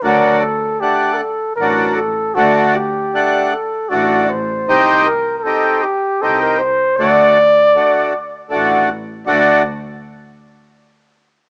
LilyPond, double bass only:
\new Staff \with { instrumentName = "Double bass" } { \clef bass \time 3/4 \tempo 4 = 78 d,8 r4. a,,4 | d,8 r4. a,,4 | c,8 r4. c,4 | d,8 r4. a,,4 |
d,8 r2 r8 | }